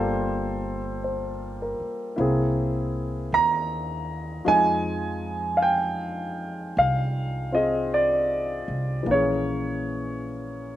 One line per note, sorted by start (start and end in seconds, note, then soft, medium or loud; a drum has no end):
0.00 1.76 G1 medium
0.00 2.18 G3 soft
0.00 2.16 A#3 soft
0.00 2.18 F4 soft
0.00 2.19 A4 medium
0.00 1.03 C5 medium
1.04 1.95 C5 soft
1.62 2.43 A#4 soft
1.80 muted upright bass stroke soft
2.16 3.28 C2 medium
2.16 4.46 A#3 soft
2.16 4.48 C4 soft
2.16 4.46 E4 soft
2.21 4.48 G#4 medium
3.32 4.43 D#2 medium
3.32 4.44 A#5 medium
4.45 6.72 F2 medium
4.45 9.06 F3 medium
4.45 9.07 G#3 soft
4.45 9.08 D#4 medium
4.45 5.61 G#5 loud
5.57 5.61 F5 medium
5.62 6.73 G5 medium
6.77 8.65 C2 medium
6.77 7.57 F5 medium
7.52 9.07 C4 soft
7.52 9.07 F4 soft
7.52 9.08 G#4 soft
7.52 7.90 D#5 medium
7.94 9.04 D5 medium
8.68 9.04 C2 medium
9.03 10.76 A#1 medium
9.03 10.76 E3 soft
9.07 10.76 A#3 soft
9.07 10.76 C#4 soft
9.07 10.76 C#5 medium
9.14 10.76 G#4 soft